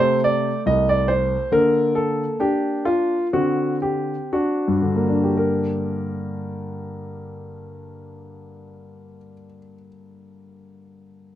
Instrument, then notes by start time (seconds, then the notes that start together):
grand piano
Already playing: C3 A3 C5
0.24 D5
0.66 C2 D#5
0.89 D5
1.08 C5
1.52 D3 A#3 A#4
1.95 A4
2.40 D4 G4
2.85 F4
3.33 D3 C4 F#4
3.82 G4
4.33 D4 F#4
4.68 G2
4.82 D3
4.96 A#3
5.09 D4
5.24 G4
5.37 A#4